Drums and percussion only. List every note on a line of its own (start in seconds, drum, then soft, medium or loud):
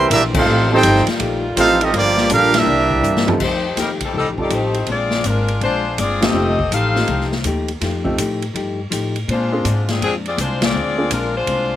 0.11 kick soft
0.11 hi-hat pedal medium
0.11 ride medium
0.34 kick loud
0.34 crash loud
0.83 kick soft
0.83 hi-hat pedal medium
0.83 ride medium
0.96 snare soft
1.07 snare medium
1.07 ride medium
1.20 kick soft
1.20 ride medium
1.57 kick soft
1.57 hi-hat pedal medium
1.57 ride medium
1.81 ride medium
1.94 kick soft
1.94 ride medium
2.17 snare medium
2.30 kick soft
2.30 hi-hat pedal medium
2.30 ride medium
2.54 snare medium
2.54 ride medium
2.91 kick medium
3.04 hi-hat pedal medium
3.16 snare medium
3.28 floor tom loud
3.40 kick medium
3.40 crash medium
3.77 kick soft
3.77 snare soft
3.77 hi-hat pedal medium
3.77 ride medium
4.00 kick medium
4.00 ride medium
4.14 kick soft
4.38 kick soft
4.50 kick soft
4.50 hi-hat pedal soft
4.50 ride medium
4.74 ride soft
4.87 kick soft
4.87 ride medium
5.11 snare medium
5.24 kick soft
5.24 hi-hat pedal medium
5.24 ride medium
5.48 ride soft
5.61 kick soft
5.61 ride soft
5.98 kick soft
5.98 hi-hat pedal medium
5.98 ride medium
6.22 snare medium
6.22 ride medium
6.59 kick medium
6.72 kick soft
6.72 hi-hat pedal medium
6.72 ride medium
6.96 snare medium
7.08 kick soft
7.08 ride medium
7.21 snare soft
7.32 snare soft
7.44 kick soft
7.44 hi-hat pedal medium
7.44 ride medium
7.68 ride soft
7.81 kick soft
7.81 snare soft
7.81 ride medium
8.05 kick medium
8.18 kick soft
8.18 hi-hat pedal medium
8.18 ride medium
8.42 ride soft
8.55 kick soft
8.55 ride medium
8.92 kick soft
8.92 hi-hat pedal medium
8.92 ride medium
9.16 ride soft
9.28 kick soft
9.28 ride medium
9.65 kick soft
9.65 hi-hat pedal medium
9.65 ride medium
9.89 snare medium
9.89 ride soft
10.02 kick soft
10.02 ride medium
10.26 ride soft
10.38 kick soft
10.38 hi-hat pedal medium
10.38 ride medium
10.62 snare medium
10.62 ride medium
11.11 kick soft
11.11 hi-hat pedal soft
11.11 ride medium
11.47 kick soft
11.47 ride medium